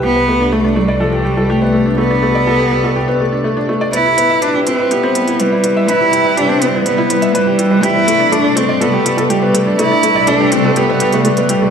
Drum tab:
HH |----------------|----------------|x-x-x-x-x-xxx-x-|x-x-x-x-x-xxx-x-|

HH |x-x-x-x-x-xxx-x-|x-x-x-x-x-xxxxx-|